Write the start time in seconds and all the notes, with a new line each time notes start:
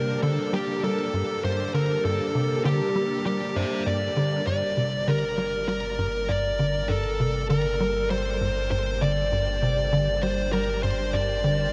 Already playing: C3 G3 A#3 D4 A#4 A5
0.23 D3 A4
0.53 G3 G4
0.83 G3 A4
1.14 G2
1.44 G2 C5
1.74 D3 A#4
2.05 G2 A4
2.35 C3
2.65 D3 G4
2.95 G3
3.26 G3 G4
3.56 G2 C5
3.86 G2 D5
4.17 D3
4.47 G1 G2 G3 G4 D5 G5
4.67 D4
4.77 C3
5.08 D3 A#4
5.35 G3 A5
5.57 A#3
5.68 G3 A#4
5.98 G2
6.29 G2 D5
6.59 D3
6.89 G2 A4
7.20 C3
7.50 D3 A#4
7.80 G3
8.10 G3 C5
8.41 G2
8.71 G2 C5
9.01 D3 D5
9.32 G2
9.62 C3
9.93 D3
10.22 G3 C5
10.43 C5
10.53 G3 A#4
10.83 G2 C5
11.13 G2 D5
11.44 D3